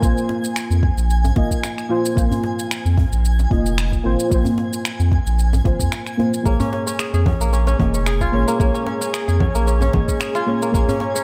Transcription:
Already playing: synth stab F4 C5 D#5, synth texture G#5
0.00 sub bass A#1, synth stab A#3 F4, kick, shaker
0.04 synth stab C5
0.17 shaker
0.29 djembe slap
0.44 shaker
0.56 finger snap, shaker
0.70 sub bass F2, shaker
0.83 kick
0.97 sub bass A#1, shaker
1.10 shaker
1.25 djembe tone, shaker
1.36 sub bass G#1, synth stab A#3 F4 D#5, kick, djembe slap
1.51 kick, shaker
1.64 finger snap, djembe slap, shaker
1.78 finger snap, shaker
1.89 synth stab A#3 F4 C5
2.05 shaker
2.15 sub bass A#1, synth stab A#3 F4 C5, kick, shaker
2.32 djembe bass, shaker
2.43 djembe slap
2.59 shaker
2.71 finger snap, shaker
2.85 sub bass F2, shaker
2.97 kick, djembe tone, djembe bass
3.12 sub bass A#1, shaker
3.25 shaker
3.39 djembe slap, shaker
3.50 sub bass F1, synth stab A#3 F4 D#5, kick, djembe tone
3.66 shaker
3.78 finger snap, shaker
3.92 kick, shaker
4.04 sub bass G#1, synth stab A#3 F4 C5
4.19 shaker
4.30 sub bass A#1, synth stab A#3 F4, kick, shaker
4.34 synth stab C5
4.45 djembe bass, shaker
4.58 djembe slap
4.73 shaker
4.85 finger snap, shaker
4.99 sub bass F2, shaker
5.12 kick, djembe slap, djembe tone
5.26 sub bass A#1, shaker
5.39 shaker
5.53 djembe tone, shaker
5.64 sub bass G#1, synth stab A#3 F4 C5, kick, djembe slap
5.80 sub bass F2, kick, shaker
5.92 finger snap, djembe slap, shaker
6.07 finger snap, shaker
6.17 synth stab A#3 F4 C5, djembe slap, djembe tone
6.34 shaker
6.43 sub bass A#1, synth stab A#3 G#4 C#5, kora A#3, ambient pad G#4 C#5 A#5, synth texture G#5, kick, shaker
6.60 kora C#4, djembe bass, shaker
6.73 kora C#4, djembe slap
6.87 kora C#4, shaker
6.99 kora G#4, finger snap, shaker
7.13 sub bass F2, kora G#4, shaker
7.26 kora C#4, kick, djembe tone, low conga, djembe bass
7.40 sub bass A#1, kora A#3, shaker
7.53 kora C#4, shaker
7.67 kora C#4, djembe slap, shaker
7.79 sub bass F1, synth stab A#3 G#4 D#5, kora C#4, kick, djembe tone, low conga
7.94 kora C#4, shaker
8.06 kora G#4, finger snap, shaker
8.21 kora F4, kick, shaker
8.32 sub bass G#1, synth stab A#3 G#4 C#5, kora C#4
8.48 kora A#3, shaker
8.58 sub bass A#1, synth stab A#3 G#4 C#5, kora A#3, kick, shaker
8.74 kora C#4, shaker
8.87 kora C#4, djembe slap
9.01 kora C#4, shaker
9.13 kora G#4, finger snap, shaker
9.28 sub bass F2, kora G#4, shaker
9.40 kora C#4, kick, low conga
9.54 sub bass A#1, kora A#3, shaker
9.67 kora C#4, shaker
9.81 kora C#4, djembe tone, shaker
9.93 sub bass G#1, synth stab A#3 G#4 D#5, kora C#4, kick, djembe slap, low conga
10.08 kora C#4, kick, shaker
10.20 kora G#4, finger snap, djembe slap, shaker
10.35 kora F4, finger snap, shaker
10.46 synth stab A#3 G#4 C#5, kora C#4
10.62 kora A#3, shaker
10.72 sub bass A#1, synth stab A#3 G#4, kora A#3, kick, shaker
10.76 synth stab C#5
10.88 kora C#4, djembe bass, shaker
11.00 kora C#4, djembe slap
11.16 kora C#4, shaker

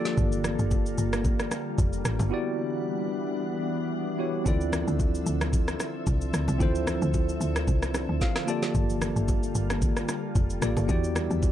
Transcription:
Already playing: ambient pad D3 G3 A#3 F4 A4, tine electric piano A#3 F4 G4 A4 D5
0.05 snare, low bongo, shaker
0.18 log drum bass G1, kick, low conga, shaker
0.32 shaker
0.44 cross-stick, high bongo, low conga, shaker
0.59 log drum bass G1, shaker
0.71 kick, high bongo, shaker
0.86 shaker
0.98 log drum bass G1, shaker
1.13 cross-stick, low bongo, shaker
1.25 kick, low conga, shaker
1.40 cross-stick, high bongo, shaker
1.51 cross-stick, low bongo, shaker
1.78 log drum bass F1, kick, high bongo, shaker
1.93 shaker
2.05 log drum bass A1, cross-stick, shaker
2.19 log drum bass G1, low bongo, shaker
2.30 ambient pad E3 B3 D4 F#5, tine electric piano B3 E4 F#4 G4
2.34 tine electric piano D5
4.18 tine electric piano B3 E4 F#4 G4 C#5
4.44 log drum bass D2, ambient pad D3 F3 C4 A4 E5, tine electric piano C4 E4 F4 A4, kick, low conga, shaker
4.48 tine electric piano D5
4.61 shaker
4.72 cross-stick, high bongo, low conga, shaker
4.88 log drum bass D2, shaker
5.00 kick, high bongo, shaker
5.15 shaker
5.26 log drum bass D2, shaker
5.41 cross-stick, low bongo, shaker
5.53 kick, low conga, shaker
5.68 cross-stick, high bongo, shaker
5.80 cross-stick, low bongo, shaker
6.07 log drum bass C2, kick, high bongo, shaker
6.21 shaker
6.34 log drum bass D2, cross-stick, shaker
6.48 log drum bass C2, low bongo, shaker
6.58 log drum bass D2, tine electric piano C4 E4 F4 A4, kick, low conga, shaker
6.62 tine electric piano C5
6.75 shaker
6.87 cross-stick, high bongo, low conga, shaker
7.02 log drum bass D2, shaker
7.14 kick, high bongo, shaker
7.29 shaker
7.41 log drum bass D2, shaker
7.56 cross-stick, low bongo, shaker
7.68 log drum bass C2, kick, low conga, shaker
7.83 cross-stick, high bongo, shaker
7.94 cross-stick, low bongo, shaker
8.09 log drum bass D2
8.21 tine electric piano F5, kick, snare, high bongo, shaker
8.36 cross-stick, snare, shaker
8.46 ambient pad G3 A#3 F4, tine electric piano A#3 F4 G4 A4 D5 A5, shaker
8.62 snare, low bongo, shaker
8.75 log drum bass G1, kick, low conga, shaker
8.90 shaker
9.01 cross-stick, high bongo, low conga, shaker
9.16 log drum bass G1, shaker
9.28 kick, high bongo, shaker
9.43 shaker
9.55 log drum bass G1, shaker
9.70 cross-stick, low bongo, shaker
9.82 kick, low conga, shaker
9.97 cross-stick, high bongo, shaker
10.08 cross-stick, low bongo, shaker
10.35 log drum bass F1, kick, high bongo, shaker
10.50 shaker
10.61 log drum bass A1, tine electric piano A#3 F4 G4 A4 D5, cross-stick, shaker
10.77 log drum bass G1, low bongo, shaker
10.87 log drum bass E2, ambient pad E3 G3 B3 E5, tine electric piano B3 E4 F#4 G4 D5, kick, low conga, shaker
11.04 shaker
11.15 cross-stick, high bongo, low conga, shaker
11.31 log drum bass E2, shaker
11.42 kick, high bongo, shaker

